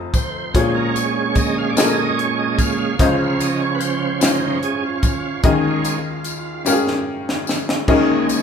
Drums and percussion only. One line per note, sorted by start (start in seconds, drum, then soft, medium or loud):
0.14 kick medium
0.14 closed hi-hat soft
0.14 tambourine soft
0.55 kick medium
0.55 closed hi-hat medium
0.96 closed hi-hat soft
0.96 tambourine medium
1.35 kick medium
1.35 closed hi-hat soft
1.35 tambourine soft
1.77 snare loud
1.77 closed hi-hat medium
1.77 tambourine medium
2.19 closed hi-hat soft
2.59 kick medium
2.59 closed hi-hat soft
2.59 tambourine medium
2.99 kick medium
2.99 closed hi-hat medium
3.40 closed hi-hat soft
3.40 tambourine medium
3.81 closed hi-hat soft
3.81 tambourine soft
4.21 snare loud
4.21 closed hi-hat medium
4.21 tambourine medium
4.63 closed hi-hat soft
5.03 kick medium
5.03 closed hi-hat soft
5.03 tambourine soft
5.44 kick loud
5.44 closed hi-hat medium
5.85 closed hi-hat medium
5.85 tambourine medium
6.24 closed hi-hat soft
6.24 tambourine soft
6.66 snare medium
6.66 tambourine medium
6.88 snare medium
7.29 snare medium
7.47 snare medium
7.47 tambourine soft
7.69 snare medium
7.88 kick medium
7.88 crash medium
8.29 closed hi-hat medium
8.29 tambourine medium